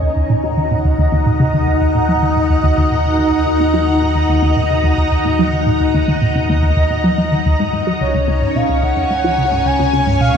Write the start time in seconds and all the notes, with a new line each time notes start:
Already playing: D#2 C#4 D#4 C#5 D#5 G#5 A#5
0.02 D#2
0.16 D#2
0.29 A#2 F#5
0.44 F#3
0.57 D#3
0.71 A#2
0.85 D#2
0.98 D#2
1.12 D#2
1.26 A#2
1.40 C#3
1.54 D#2
1.67 D#2
1.81 D#2
1.95 A#2
2.09 F#3
2.22 D#3
2.36 A#2
2.50 D#2
2.64 D#2
2.78 D#2
2.91 A#2
3.05 C#3
3.19 D#2
3.33 D#2
3.46 D#2
3.60 A#2
3.74 F#3
3.88 D#3
4.02 A#2
4.15 D#2
4.29 D#2
4.43 D#2
4.56 A#2
4.70 C#3
4.84 D#2
4.98 D#2
5.11 D#2
5.25 A#2
5.39 F#3
5.53 D#3
5.67 A#2
5.80 D#2
5.94 D#2
6.08 D#2
6.22 A#2
6.35 C#3
6.49 D#2
6.63 D#2
6.77 D#2
6.90 A#2
7.04 F#3
7.18 F#3
7.32 D#3
7.46 D#2
7.59 G#2
7.73 G#2
7.87 F#3
8.00 C#2 C#4 C#5
8.15 C#2 C#5
8.28 C#2
8.42 G#2
8.55 B2 F5
8.69 C#2
8.83 C#2 F#5 G#5
8.97 F2
9.11 G#2
9.24 F3
9.38 C#3
9.52 G#2
9.66 C#2 G#5
9.79 C#2
9.93 C#2
10.07 G#2
10.21 B2 F5